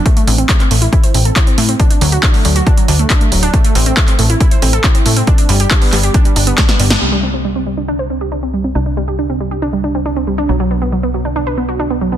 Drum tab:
HH |xxoxxxoxxxoxxxox|xxoxxooxxxoxxxox|xxoxxxoxxxoxxxox|xxoxxooxxxoxxxox|
CP |----xx------x---|----x-------x---|----xx------x---|----x-x-----x---|
SD |----------------|----------------|----------------|------------oo-o|
BD |o---o---o---o---|o---o---o---o---|o---o---o---o---|o---o---o---o---|

HH |----------------|----------------|----------------|
CP |----------------|----------------|----------------|
SD |----------------|----------------|----------------|
BD |----------------|----------------|----------------|